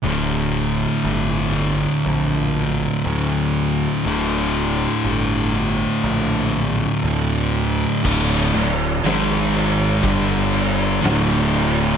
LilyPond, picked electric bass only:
\new Staff \with { instrumentName = "Picked electric bass" } { \clef bass \time 4/4 \key c \dorian \tempo 4 = 60 d,,4 g,,4 bes,,4 d,4 | d,,4 g,,4 bes,,4 d,4 | \key g \dorian d,,8 d,,8 gis,,4 g,,4 d,,4 | }